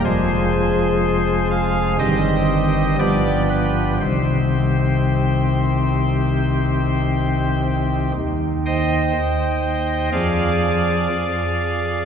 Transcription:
<<
  \new Staff \with { instrumentName = "Pipe organ" } { \time 4/4 \key c \minor \tempo 4 = 61 c''4. f''8 ees''4 d''8 b'8 | c''2.~ c''8 r8 | r8 <c'' ees'' g''>4. <aes' d'' f''>2 | }
  \new Staff \with { instrumentName = "Pipe organ" } { \clef bass \time 4/4 \key c \minor <f,, f, f aes aes'>2 <g,, g, ees c' g'>4 <g,, g, f b g'>4 | <c, c ees c' g'>1 | <ees, ees>4 ees,4 <f, f>4 f,4 | }
>>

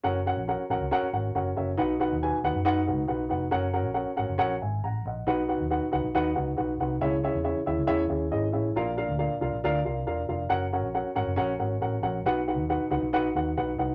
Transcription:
<<
  \new Staff \with { instrumentName = "Upright piano" } { \time 4/4 \key fis \mixolydian \tempo 4 = 138 << { r1 | r1 | r2 r8 <e'' gis''>8 <fis'' ais''>8 <dis'' fis''>8~ | <dis'' fis''>8 r2. r8 |
r1 | r1 | r1 | r1 | } \\ { <cis' fis' ais' fis''>8 <cis' fis' ais' fis''>8 <cis' fis' ais' fis''>8 <cis' fis' ais' fis''>8 <cis' fis' ais' fis''>8 <cis' fis' ais' fis''>8 <cis' fis' ais' fis''>8 <cis' fis' ais' e''>8 | <dis' fis' b' fis''>8 <dis' fis' b' fis''>8 <dis' fis' b' gis''>8 <dis' fis' b' fis''>8 <dis' fis' b' fis''>8 <dis' fis' b' fis''>8 <dis' fis' b' fis''>8 <dis' fis' b' fis''>8 | <cis' fis' ais' fis''>8 <cis' fis' ais' fis''>8 <cis' fis' ais' fis''>8 <cis' fis' ais' fis''>8 <cis' fis' ais' fis''>8 r4. | <dis' fis' b' fis''>8 <dis' fis' b' fis''>8 <dis' fis' b' fis''>8 <dis' fis' b' fis''>8 <dis' fis' b' fis''>8 <dis' fis' b' fis''>8 <dis' fis' b' fis''>8 <dis' fis' b' fis''>8 |
<cis' e' gis' e''>8 <cis' e' gis' e''>8 <cis' e' gis' e''>8 <cis' e' gis' e''>8 <cis' e' gis' e''>8 <cis' e' gis' e''>8 <cis' e' gis' dis''>8 <cis' e' gis' e''>8 | <d' eis' ais' eis''>8 <d' eis' ais' eis''>8 <d' eis' ais' eis''>8 <d' eis' ais' eis''>8 <d' eis' ais' eis''>8 <d' eis' ais' eis''>8 <d' eis' ais' eis''>8 <d' eis' ais' eis''>8 | <cis' fis' ais' fis''>8 <cis' fis' ais' fis''>8 <cis' fis' ais' fis''>8 <cis' fis' ais' fis''>8 <cis' fis' ais' fis''>8 <cis' fis' ais' fis''>8 <cis' fis' ais' fis''>8 <cis' fis' ais' fis''>8 | <dis' fis' b' fis''>8 <dis' fis' b' fis''>8 <dis' fis' b' fis''>8 <dis' fis' b' fis''>8 <dis' fis' b' fis''>8 <dis' fis' b' fis''>8 <dis' fis' b' fis''>8 <dis' fis' b' fis''>8 | } >> }
  \new Staff \with { instrumentName = "Upright piano" } { \clef bass \time 4/4 \key fis \mixolydian r1 | b,4. r2 r8 | r1 | b,4. r2 r8 |
cis4. r2 r8 | ais,4. r2 r8 | r1 | b,4. r2 r8 | }
  \new Staff \with { instrumentName = "Fingered electric bass" } { \clef bass \time 4/4 \key fis \mixolydian fis,,8. ais,,8 r16 ais,,16 cis,16 r8 gis,,8 fis,,8 fis,,8 | b,,8. dis,8 r16 dis,16 fis,8. cis,8 b,,8 eis,,8 | fis,,8. ais,,8 r16 gis,,16 fis,,16 ais,,8 gis,,8 a,,8 ais,,8 | b,,8. dis,8 r16 cis,16 b,,16 dis,8 cis,8 b,,8 bis,,8 |
cis,8. e,8 r16 dis,16 cis,16 e,8 dis,8 gis,,8 a,,8 | ais,,8. d,8 r16 bis,,16 ais,,16 d,8 bis,,8 e,,8 eis,,8 | fis,,8. ais,,8 r16 gis,,16 fis,,16 ais,,8 gis,,8 a,,8 ais,,8 | b,,8. dis,8 r16 cis,16 b,,8. dis,8 b,,8 bis,,8 | }
>>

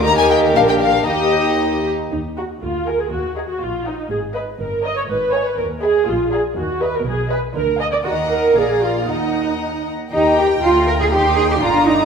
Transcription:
<<
  \new Staff \with { instrumentName = "Violin section" } { \time 2/4 \key ees \major \tempo 4 = 120 bes''16 aes''16 g''8 f''16 g''16 f''8 | ees''4. r8 | \key ees \minor r8 bes''8 r8 bes''8 | r8 bes''8 r8 bes''8 |
r8 ces'''8 r8 bes''8 | r8 ces'''8 r8 ces'''8 | r8 bes''8 r8 bes''8 | r8 ces'''8 r8 bes''8 |
bes''4 bes''4 | bes''4. r8 | \key ees \major bes''4 bes''4 | c'''4 bes''4 | }
  \new Staff \with { instrumentName = "Violin section" } { \time 2/4 \key ees \major << { g'2 | g'4. r8 | \key ees \minor r8 ges''8 r8 aes''8 | r8 ges''8 r8 ges''8 |
r8 ees''8 r8 ees''8 | r8 aes''8 r8 aes''8 | r8 f''8 r8 ees''8 | r8 aes''8 r8 aes''8 |
ges''4 f''4 | ges''4. r8 | \key ees \major g''2 | g''4 bes''4 | } \\ { bes4 d'4 | ees'4. r8 | r8 ges''8 r8 f''8 | r8 ees''8 r8 ees''8 |
r8 ees''8 r8 des''8 | r8 ees''8 r8 ees''8 | r8 d''8 r8 ees''8 | r8 ees''8 r8 f''8 |
ees''4 d''4 | ees''4. r8 | r2 | r2 | } >> }
  \new Staff \with { instrumentName = "Viola section" } { \time 2/4 \key ees \major bes'2 | g'4. r8 | \key ees \minor ees'8 ges'8 f'8 bes'16 aes'16 | ges'8 aes'16 ges'16 f'8 ees'8 |
aes'8 ces''8 bes'8 ees''16 des''16 | ces''8 des''16 ces''16 bes'8 aes'8 | f'8 aes'8 ges'8 ces''16 bes'16 | aes'8 ces''8 bes'8 ees''16 d''16 |
ges'8 bes'8 aes'8 f'8 | ees'4. r8 | \key ees \major g'4 f'4 | ees'4 d'4 | }
  \new Staff \with { instrumentName = "Cello section" } { \clef bass \time 2/4 \key ees \major ees4 bes,4 | ees,4. r8 | \key ees \minor ees,4 d,4 | ees,4 bes,4 |
aes,4 g,4 | aes,4 ees,4 | bes,4 ees4 | ces4 d4 |
ees4 bes,4 | ees,4. r8 | \key ees \major ees'8 g'8 f'8 bes'16 aes'16 | g'8 aes'16 g'16 f'8 ees'8 | }
  \new Staff \with { instrumentName = "Double bass section" } { \clef bass \time 2/4 \key ees \major ees,4 bes,,4 | ees,4. r8 | \key ees \minor ees,4 d,4 | ees,4 bes,,4 |
aes,,4 g,,4 | aes,,4 ees,4 | bes,,4 ees,4 | ces,4 d,4 |
ees,4 bes,,4 | ees,4. r8 | \key ees \major ees,4 d,4 | ees,4 g,,4 | }
>>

